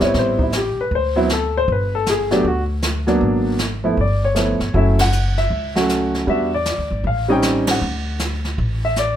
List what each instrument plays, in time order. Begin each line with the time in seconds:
0.00 upright bass G1, grand piano G3 B3 C4 E4, snare
0.04 grand piano C#5
0.14 upright bass A1, brush sweep, kick, snare
0.19 grand piano C5
0.39 grand piano E4, kick
0.52 snare, hi-hat pedal
0.57 grand piano G4
0.77 grand piano B4, muted upright bass stroke
0.91 upright bass D2, brush sweep, kick
0.95 grand piano C5
1.16 grand piano F#3 B3 C4 E4
1.29 grand piano A4, snare, hi-hat pedal
1.57 grand piano C5
1.68 upright bass G1, brush sweep, kick
1.72 grand piano B4
1.95 grand piano A4
2.06 grand piano G#4, snare, hi-hat pedal
2.31 grand piano F#3 A3 B3 D4 G4, snare
2.44 upright bass D2, grand piano F#4, brush sweep, kick
2.82 snare, hi-hat pedal
3.07 grand piano F#3 A#3 B3 D4, snare
3.21 upright bass G#1, brush sweep, kick
3.59 snare, hi-hat pedal
3.84 grand piano F3 A3 B3 E4
3.97 upright bass G1, grand piano D5, brush sweep, kick
4.25 grand piano C#5
4.35 grand piano F3 A3 B3 E4, snare, hi-hat pedal
4.60 upright bass G1, snare
4.74 upright bass F#1, grand piano F#3 A3 C#4 E4 E5, brush sweep, kick
4.99 grand piano F#5, snare, ride
5.12 hi-hat pedal
5.38 grand piano E5, snare
5.50 upright bass C#2, brush sweep, kick
5.75 grand piano F#3 A3 C#4 F#4, snare
5.89 snare, hi-hat pedal
6.14 snare
6.27 upright bass E2, grand piano G3 B3 D4 F#4 E5, brush sweep, kick
6.54 grand piano D5
6.65 snare, hi-hat pedal
6.78 upright bass D2
6.91 upright bass G#1
7.04 upright bass A1, grand piano F5, brush sweep, kick
7.28 grand piano G3 C4 C#4 D#4 G5
7.42 snare, hi-hat pedal
7.67 grand piano F#5, snare, ride
7.81 upright bass D2, brush sweep
8.19 snare, hi-hat pedal
8.45 snare
8.58 upright bass A1, brush sweep, kick
8.85 grand piano E5
8.96 grand piano D5, snare, hi-hat pedal